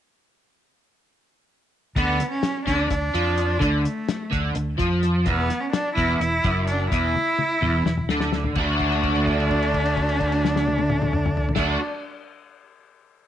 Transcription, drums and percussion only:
1.96 kick, closed hi-hat
2.20 snare, closed hi-hat
2.43 snare, closed hi-hat
2.67 kick, snare, closed hi-hat
2.90 kick, snare, closed hi-hat
3.14 closed hi-hat
3.38 closed hi-hat
3.61 kick, closed hi-hat
3.85 closed hi-hat
4.09 snare, closed hi-hat
4.32 kick, closed hi-hat
4.55 closed hi-hat
4.79 kick, closed hi-hat
5.03 snare, closed hi-hat
5.26 kick, closed hi-hat
5.50 snare, closed hi-hat
5.73 snare, closed hi-hat
5.97 kick, snare, closed hi-hat
6.21 closed hi-hat
6.44 kick, closed hi-hat
6.67 closed hi-hat
6.92 kick, closed hi-hat
7.16 high tom
7.39 high tom
7.62 mid tom
7.86 snare
7.97 mid tom
8.09 snare
8.21 snare
8.33 snare
8.44 floor tom
8.55 kick, crash
8.80 kick, crash
8.92 crash
9.03 kick, crash
9.15 crash
9.27 kick, crash
9.40 crash
9.51 kick, crash
9.62 crash
9.74 kick, crash
9.86 crash
9.97 kick, crash
10.09 crash
10.20 kick, crash
10.32 crash
10.45 snare
10.56 snare
10.68 high tom
10.78 high tom
10.90 mid tom
11.02 mid tom
11.13 mid tom
11.26 mid tom
11.37 floor tom
11.49 floor tom
11.56 kick, snare, crash

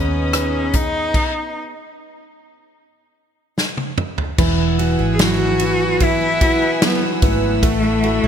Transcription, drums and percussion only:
0.33 cross-stick, closed hi-hat
0.73 kick, closed hi-hat
1.14 kick, crash
3.58 snare
3.77 high tom
3.98 mid tom
4.18 floor tom
4.38 kick, crash
4.79 ride
5.19 snare, ride
5.59 ride
6.00 kick, ride
6.41 kick, ride
6.82 snare, ride
7.22 kick, ride
7.63 kick, ride
8.04 ride

